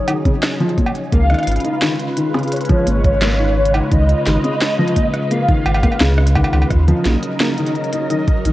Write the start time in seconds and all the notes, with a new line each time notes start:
Already playing: C#3 F#3 D#4 G#4 C#5
0.08 D#3, closed hi-hat, cowbell
0.25 C#3, kick, closed hi-hat
0.43 cross-stick, snare, closed hi-hat
0.60 F3, closed hi-hat
0.69 closed hi-hat
0.78 A#2, kick, closed hi-hat
0.86 closed hi-hat, cowbell
0.95 closed hi-hat
1.12 C#2 C#3 G#3 A#3 F4 B4 F5, kick, closed hi-hat
1.30 D#3, cross-stick, closed hi-hat
1.34 cross-stick, closed hi-hat
1.39 cross-stick, closed hi-hat
1.43 cross-stick, closed hi-hat
1.47 G#1, cross-stick, closed hi-hat
1.52 cross-stick, closed hi-hat
1.56 cross-stick, closed hi-hat
1.60 cross-stick, closed hi-hat
1.65 D#4, closed hi-hat
1.82 D#3, snare, closed hi-hat
2.00 closed hi-hat
2.17 D#3, closed hi-hat
2.35 C#3, cross-stick, closed hi-hat
2.39 closed hi-hat
2.43 closed hi-hat
2.48 closed hi-hat
2.52 C#5, closed hi-hat
2.56 closed hi-hat
2.61 closed hi-hat
2.65 closed hi-hat
2.69 F3, kick, closed hi-hat
2.87 G#1 A#2, closed hi-hat
3.04 kick, closed hi-hat
3.22 A#3, cross-stick, snare, closed hi-hat
3.39 D#3
3.65 closed hi-hat
3.74 D#4, closed hi-hat, cowbell
3.91 C#2 D#3 D#5, kick, closed hi-hat
4.09 closed hi-hat
4.26 G#1 D#3, snare, closed hi-hat
4.44 C#3, closed hi-hat
4.61 snare, closed hi-hat
4.79 F3
4.87 closed hi-hat
4.96 A#2, kick, closed hi-hat
5.14 cross-stick, closed hi-hat
5.31 A#3 F5, closed hi-hat
5.48 D#3, kick, closed hi-hat
5.66 G#1, cowbell
5.75 cowbell
5.83 A#3, kick, closed hi-hat, cowbell
5.92 cowbell
6.01 C#2 C#3, snare, closed hi-hat
6.18 cross-stick
6.27 closed hi-hat
6.36 D#3, kick, cowbell
6.44 cowbell
6.53 C#2 D#3, cowbell
6.62 cowbell
6.71 D#2 F#3 D#4 A#4 D#5, kick, cross-stick, closed hi-hat
6.88 F3, closed hi-hat
7.05 A#1 A#2, snare, closed hi-hat
7.23 closed hi-hat
7.40 A#3, snare, closed hi-hat
7.58 D#3, closed hi-hat
7.67 closed hi-hat
7.75 closed hi-hat
7.84 closed hi-hat
7.93 D#4, closed hi-hat
8.10 D#3, closed hi-hat
8.28 kick, closed hi-hat
8.45 A#1 D#3, closed hi-hat